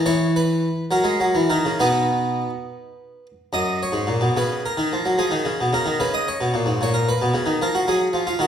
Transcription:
0.06 E3 C#5
0.36 B4
0.91 F#3 A#4
1.04 G#3
1.20 F#3
1.35 E3
1.50 D#3 A#4
1.65 C#3
1.80 B2 B3 D#4 B4
3.53 F#2 D#5
3.83 C#5
3.92 G#2
4.07 A#2
4.21 B2
4.37 C#3 B4
4.66 A#4
4.78 D#3
4.93 F3
5.05 F#3
5.18 F3 G#4
5.31 D#3
5.45 C#3
5.61 B2
5.73 C#3 A#4
5.86 D#3
6.00 C#3 B4
6.14 D#5
6.28 C#5
6.41 B2
6.54 A#2
6.66 G#2
6.81 A#2 C#5
6.94 A#4
7.09 B4
7.22 B2
7.34 C#3
7.46 D#3
7.62 F3 A#4
7.75 F#4
7.88 F#3 G#4
8.13 F3
8.27 F4
8.39 D#3 F#4

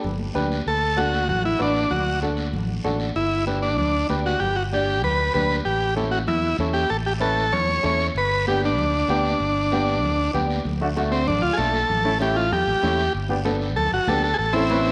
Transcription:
0.04 G1, low conga, long guiro
0.19 high conga
0.34 D2 D4 G4 B4, high conga, low conga, short guiro
0.52 short guiro
0.66 D2 A4, long guiro
0.96 D4 F#4 A4, high conga, short guiro
1.13 short guiro
1.29 A1 F#4, low conga, long guiro
1.44 E4, high conga
1.58 A1 D4 F#4 B4, high conga, short guiro
1.76 short guiro
1.90 D2 F#4, low conga, long guiro
2.21 D4 F#4 A4, high conga, short guiro
2.37 short guiro
2.53 A1, low conga, long guiro
2.69 high conga
2.84 A1 D4 F#4 A4, high conga, short guiro
3.00 short guiro
3.15 G1 E4, long guiro
3.47 D4 G4 B4, high conga, short guiro
3.62 D4, short guiro
3.78 D2 D4, low conga, long guiro
4.09 D2 D4 G4 B4, high conga, short guiro
4.26 F#4, short guiro
4.40 G1 G4, low conga, long guiro
4.56 F#4
4.73 D4 G4 D5, high conga, short guiro
4.90 short guiro
5.03 D2 B4, low conga, long guiro
5.34 D2 D4 G4 B4, high conga, low conga, short guiro
5.51 short guiro
5.65 A1 G4, long guiro
5.96 C#4 E4 A4, high conga, short guiro
6.11 F#4, short guiro
6.27 E2 E4, low conga, long guiro
6.58 E2 C#4 E4 A4, high conga, short guiro
6.74 G4, short guiro
6.89 A1 A4, long guiro
7.06 G4
7.20 C#4 E4 A4 B4, high conga, short guiro
7.37 short guiro
7.52 E2 C#5, low conga, long guiro
7.69 high conga
7.83 E2 C#4 E4 A4 C#5, high conga, short guiro
8.00 short guiro
8.15 G1 B4, long guiro
8.47 B3 D4 G4, high conga, short guiro
8.62 D4, short guiro
8.78 D2, low conga, long guiro
9.08 D2 B3 D4 G4, high conga, short guiro
9.25 short guiro
9.40 G1, long guiro
9.72 B3 D4 G4, high conga, short guiro
9.87 short guiro
10.02 D2, low conga, long guiro
10.33 D2 B3 D4 G4, high conga, low conga, short guiro
10.51 short guiro
10.65 D2, high conga, low conga, long guiro
10.81 A3 D4 F#4
10.97 A3 D4 F#4, high conga, short guiro
11.12 C4, short guiro
11.28 A1 D4, high conga, low conga, long guiro
11.42 D2 F4
11.53 G#4 A4
11.57 B1 A3 D4 A4, high conga, short guiro
11.74 short guiro
11.90 A1, high conga, low conga, long guiro
12.05 A3 C#4 E4
12.19 A3 C#4 E4 G4, high conga, short guiro
12.36 F4, short guiro
12.52 E2 G4, high conga, low conga, long guiro
12.67 A1, high conga
12.83 E2 A3 C#4 E4, high conga, short guiro
12.99 short guiro
13.14 G1, high conga, long guiro
13.29 B3 D4 G4, high conga
13.45 B3 D4 A4, high conga, short guiro
13.61 short guiro
13.76 D2 A4, high conga, low conga, long guiro
13.92 G1 F#4
14.07 D2 B3 D4 G4 A4, high conga, low conga, short guiro
14.23 A4, short guiro
14.34 G#4
14.39 A1 A4, high conga, long guiro
14.53 C4 C#4 E4 A4, high conga
14.70 C#4 E4 B4, high conga, short guiro
14.86 short guiro

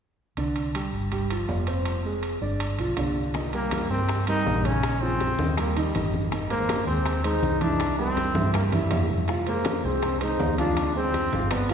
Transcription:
0.37 C2 D3 D4, high timbale
0.56 high timbale
0.75 G3 G4, high timbale
0.93 G1
1.12 G3 G4, high timbale
1.30 F3 F4, high timbale
1.49 F1, low timbale
1.67 C4 C5, high timbale
1.85 high timbale
2.05 G#3 G#4
2.23 high timbale
2.41 G1 D4 D5
2.60 high timbale
2.79 B1 F3 F4, high timbale
2.97 C2 D3 D4, high timbale, low timbale
3.34 D#3 D#4 D#5, high bongo, high conga, high timbale
3.53 G3 A#3 G4 A#4, high bongo, high conga, high timbale
3.71 high bongo, high conga, high timbale
3.90 G2 G3 C4 G4 A#4, high bongo, high conga
4.09 high bongo, high conga, high timbale
4.27 G3 D#4 G4 A#4, high conga, high timbale
4.46 A#1, high bongo, low bongo, high conga, low timbale
4.65 C#3 C#4 C#5, high bongo, high conga, high timbale
4.83 high bongo, high conga, high timbale
5.02 F3 C4 F4 G#4, high bongo, high conga
5.20 high bongo, high conga, high timbale
5.39 D#2 D#3 D#4 D#5, high bongo, high conga
5.57 G3 A#3 G4 A#4, high bongo, high conga, high timbale
5.76 D#3 G3 D#4 D#5, high conga, high timbale
5.94 G#1 D#3 D#4 D#5, high bongo, low bongo, high conga, high timbale
6.14 high bongo, high conga
6.32 D#3 D#4 D#5, high bongo, high conga, high timbale
6.50 G#3 A#3 G#4 C5, high bongo, high conga, high timbale
6.69 high bongo, high conga, high timbale
6.87 D#2 G#3 C4 G#4 C5, high bongo, high conga
7.06 high bongo, high conga, high timbale
7.24 G#3 D#4 G#4 C5, high conga, high timbale
7.42 C2, high bongo, low bongo, high conga
7.61 E3 D4 E4 E5, high bongo, high conga, high timbale
7.80 high bongo, high conga, high timbale
7.98 G3 C4 G4 A#4, high bongo, high conga
8.17 high bongo, high conga, high timbale
8.35 G2 E3 E4 E5, high bongo, high conga
8.54 G3 A#3 G4 A#4, high bongo, high conga, high timbale
8.72 E3 G3 E4 E5, high conga, high timbale
8.91 F2 E3 E4 E5, high bongo, low bongo, low conga, high timbale, low timbale
9.10 high bongo, low conga
9.28 F3 F4 F5, high bongo, high conga, high timbale
9.47 G#3 A#3 G#4 C5, high bongo, high conga, high timbale
9.65 high bongo, high conga, high timbale
9.84 C2 G#3 C4 G#4 C5, high bongo, high conga
10.02 high bongo, high conga, high timbale
10.21 G#3 D#4 G#4 C5, high conga, high timbale
10.39 D2, high bongo, low bongo, high conga, low timbale
10.58 F3 D4 F4 F5, high bongo, high conga, high timbale
10.77 high bongo, high conga, high timbale
10.95 G#3 C4 G#4 C5, high bongo, high conga
11.14 high bongo, high conga, high timbale
11.32 G1 F3 F4 F5, high bongo, high conga
11.51 B3 B4 D5, high bongo, high conga, high timbale
11.69 F3 G3 F4 F5, high conga, high timbale

